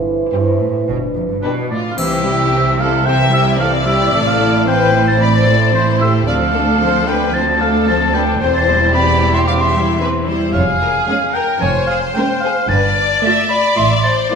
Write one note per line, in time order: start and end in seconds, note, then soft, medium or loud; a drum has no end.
0.00 0.21 G1 medium
0.00 0.21 G2 medium
0.00 1.39 E3 medium
0.00 0.88 E4 soft
0.00 0.86 C5 soft
0.32 0.58 G2 medium
0.32 0.74 E4 medium
0.32 0.74 G4 soft
0.32 0.74 C5 soft
0.60 0.88 A2 soft
0.88 1.31 G1 medium
0.88 0.96 B2 medium
0.88 1.70 D4 soft
0.88 1.70 B4 soft
1.15 1.21 F2 soft
1.29 1.43 G2 soft
1.42 1.70 B2 medium
1.42 1.84 D4 soft
1.42 1.52 D4 soft
1.42 1.84 G4 soft
1.42 1.55 B4 medium
1.42 1.84 B4 soft
1.71 1.98 A2 soft
1.71 1.98 F4 medium
1.71 1.80 D5 medium
1.91 2.00 F5 soft
1.98 4.09 C2 medium
1.98 4.09 C3 medium
1.98 2.23 E3 medium
1.98 2.23 C4 medium
1.98 2.78 G4 medium
1.98 2.81 E5 medium
1.98 triangle soft
2.25 2.52 G3 soft
2.25 2.52 E4 soft
2.52 2.79 E3 soft
2.52 2.79 C4 soft
2.79 3.06 G3 soft
2.79 3.06 E4 soft
2.79 3.05 A4 medium
2.79 3.07 F5 medium
3.06 3.31 E3 soft
3.06 3.31 C4 soft
3.06 3.15 C5 medium
3.06 3.56 E5 medium
3.06 3.32 G5 medium
3.32 3.59 G3 soft
3.32 3.59 E4 soft
3.32 3.59 G4 medium
3.32 3.45 E5 medium
3.59 3.86 E3 soft
3.59 3.86 C4 soft
3.59 3.69 A4 medium
3.59 4.67 D5 medium
3.59 3.72 F5 medium
3.86 4.13 G3 soft
3.86 4.13 E4 soft
3.86 4.14 G4 medium
3.86 4.13 E5 medium
4.13 6.23 A1 medium
4.13 6.23 A2 medium
4.13 4.38 E3 soft
4.13 4.38 C4 soft
4.13 4.20 A4 medium
4.13 4.20 E5 medium
4.27 4.67 A4 medium
4.27 4.66 F5 medium
4.40 4.67 A3 soft
4.40 4.67 E4 soft
4.67 4.94 E3 soft
4.67 4.93 C4 soft
4.67 5.07 B4 medium
4.67 5.19 C5 medium
4.67 5.06 G5 medium
4.94 5.20 A3 soft
4.94 5.20 E4 soft
5.07 5.20 C5 medium
5.07 5.23 A5 medium
5.20 5.45 E3 soft
5.20 5.45 C4 soft
5.20 5.72 D5 medium
5.20 5.27 D5 medium
5.20 5.33 B5 medium
5.34 5.74 C5 medium
5.34 5.73 A5 medium
5.48 5.74 A3 soft
5.48 5.74 E4 soft
5.73 6.00 E3 soft
5.73 6.00 C4 soft
5.73 6.01 E4 medium
5.73 6.26 C5 medium
5.73 5.86 C5 medium
6.00 6.27 A3 soft
6.00 6.27 E4 soft
6.00 6.27 G4 medium
6.00 6.13 E5 medium
6.27 8.37 D2 medium
6.27 6.52 F3 soft
6.27 6.52 C4 soft
6.27 7.06 A4 medium
6.27 6.35 D5 medium
6.27 7.10 F5 medium
6.53 6.81 A3 soft
6.53 6.81 D4 soft
6.53 6.61 A4 medium
6.80 7.08 F3 soft
6.80 7.08 C4 soft
6.80 7.07 C5 medium
7.07 7.34 A3 soft
7.07 7.34 D4 soft
7.07 7.15 B4 soft
7.07 7.35 B4 medium
7.07 7.35 G5 medium
7.34 7.59 F3 soft
7.34 7.59 C4 soft
7.34 8.38 A4 medium
7.34 7.43 C5 medium
7.34 7.63 A5 medium
7.61 7.88 A3 soft
7.61 7.88 D4 soft
7.61 7.70 A4 medium
7.61 7.87 F5 medium
7.88 8.14 F3 soft
7.88 8.14 C4 soft
7.88 7.97 C5 medium
7.88 8.16 A5 medium
8.14 8.41 A3 soft
8.14 8.41 D4 soft
8.14 8.22 B4 medium
8.14 8.40 G5 medium
8.41 10.54 E1 medium
8.41 10.54 E2 medium
8.41 8.66 E3 soft
8.41 8.66 C4 soft
8.41 8.53 C5 medium
8.41 8.93 C5 medium
8.41 8.47 G5 medium
8.54 8.93 C5 medium
8.54 8.94 A5 medium
8.68 8.94 G3 soft
8.68 8.94 E4 soft
8.94 9.21 E3 medium
8.94 9.21 C4 medium
8.94 9.98 G4 medium
8.94 9.33 D5 medium
8.94 9.36 B5 medium
9.20 9.47 G3 soft
9.20 9.47 E4 soft
9.34 9.39 E5 medium
9.34 9.47 C6 medium
9.47 9.72 E3 soft
9.47 9.72 C4 soft
9.47 9.53 F5 medium
9.47 9.60 D6 medium
9.60 10.00 E5 medium
9.60 10.00 C6 medium
9.73 10.00 G3 soft
9.73 10.00 E4 soft
9.99 10.27 E3 soft
9.99 10.27 C4 medium
9.99 10.08 B4 medium
10.27 10.54 G3 soft
10.27 10.54 E4 soft
10.27 10.54 C5 medium
10.53 10.96 F1 medium
10.53 10.96 F2 medium
10.53 11.31 G#4 medium
10.53 10.61 C#5 medium
10.53 11.36 F5 medium
10.81 10.89 A#4 medium
11.07 11.48 G#3 medium
11.07 11.47 C#4 medium
11.07 11.16 G#4 soft
11.34 11.43 A#4 medium
11.34 11.62 A#4 medium
11.34 11.60 G5 medium
11.60 12.04 F1 medium
11.60 12.04 F2 medium
11.60 12.67 C5 medium
11.60 11.89 C#5 medium
11.60 11.86 G#5 medium
11.87 11.97 G#4 medium
11.87 11.99 F5 medium
12.14 12.55 G#3 medium
12.14 12.55 C#4 medium
12.14 12.25 A#4 medium
12.14 12.40 G5 medium
12.40 12.52 G#4 medium
12.40 12.70 F5 medium
12.68 13.12 G1 medium
12.68 13.11 G2 medium
12.68 12.96 B4 medium
12.68 13.49 D5 medium
12.68 13.48 A5 medium
12.96 13.22 D5 medium
13.23 13.63 A3 medium
13.23 13.63 F4 medium
13.23 13.50 E5 medium
13.49 13.76 D5 medium
13.49 14.31 D5 medium
13.49 13.76 B5 medium
13.77 14.19 A1 medium
13.77 14.19 A2 medium
13.77 14.04 E5 medium
13.77 13.89 C6 medium
14.03 14.30 C5 medium
14.03 14.16 A5 medium
14.30 14.35 A3 medium
14.30 14.35 E4 medium
14.30 14.35 F4 medium
14.30 14.35 C5 medium
14.30 14.35 D5 medium